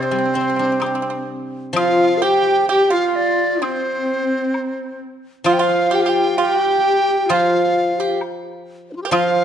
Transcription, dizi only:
0.00 1.29 C5 medium
1.75 2.25 F5 medium
2.23 2.69 G5 medium
2.69 2.92 G5 medium
2.90 3.08 F5 medium
3.08 3.17 F5 medium
3.16 3.64 D5 medium
3.63 5.01 C5 medium
5.47 5.55 F5 medium
5.53 5.63 G5 medium
5.61 5.97 F5 loud
5.95 6.02 G5 medium
6.01 6.10 F5 medium
6.09 6.40 G5 loud
6.42 7.35 G5 loud
7.34 8.23 F5 medium
8.90 8.96 D4 soft
8.90 8.92 C5 soft
8.96 9.02 F4 soft
9.02 9.04 G4 soft
9.02 9.07 A#4 medium
9.08 9.10 C5 medium
9.08 9.13 D5 medium
9.13 9.45 F5 loud

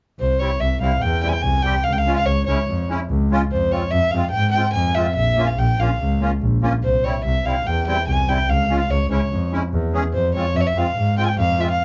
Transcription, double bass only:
0.19 0.44 C2 medium
0.60 0.73 C2 medium
0.82 0.94 C2 medium
1.02 1.27 E2 medium
1.43 1.69 C2 medium
1.86 2.11 C#2 medium
2.27 2.40 C#2 medium
2.47 2.60 C#2 medium
2.68 2.93 F2 medium
3.09 3.35 C#2 medium
3.51 3.76 F2 medium
3.92 4.05 F2 medium
4.13 4.26 F2 medium
4.34 4.59 G#2 medium
4.74 5.00 F2 medium
5.16 5.41 A#1 medium
5.57 5.70 A#1 medium
5.78 5.91 A#1 medium
5.99 6.24 C#2 medium
6.41 6.66 A#1 medium
6.82 7.07 C2 medium
7.25 7.37 C2 loud
7.45 7.58 C2 medium
7.66 7.91 E2 medium
8.07 8.32 C2 medium
8.48 8.73 C#2 medium
8.89 9.02 C#2 medium
9.10 9.23 C#2 medium
9.31 9.56 F2 medium
9.73 9.97 E2 medium
10.14 10.39 F2 medium
10.54 10.67 F2 medium
10.76 10.88 F2 medium
10.97 11.21 G#2 medium
11.37 11.62 F2 medium

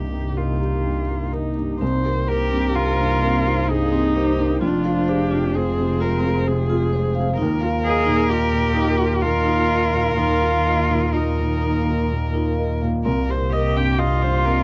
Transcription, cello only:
0.00 0.38 G4 medium
0.37 1.34 F4 soft
1.33 1.81 D#4 soft
2.30 2.77 G4 medium
2.76 3.71 F4 medium
3.69 4.62 D#4 medium
4.62 5.59 D4 medium
5.57 6.94 C4 medium
7.85 8.32 G#4 loud
8.30 9.23 G4 medium
9.21 10.16 F4 loud
10.17 11.16 F4 loud
11.14 12.11 D#4 medium
13.53 14.00 G4 medium
13.99 14.63 F4 medium

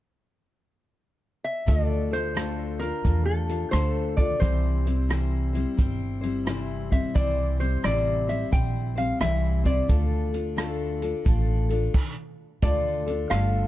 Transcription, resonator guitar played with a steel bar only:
1.44 1.69 E5 medium
1.68 1.86 D#5 medium
1.86 2.13 D5 medium
2.13 2.79 C5 medium
2.79 3.25 A#4 medium
3.25 3.74 A4 medium
3.71 4.16 C5 medium
4.17 4.39 D5 medium
4.40 5.73 C5 medium
6.92 7.16 E5 medium
7.15 7.57 D5 medium
7.60 7.85 C5 medium
7.85 8.26 D5 medium
8.29 8.52 E5 medium
8.52 8.94 G5 medium
8.98 9.20 F5 medium
9.21 9.62 E5 medium
9.66 11.91 D5 medium
12.63 13.33 D5 medium
13.30 13.68 F5 medium

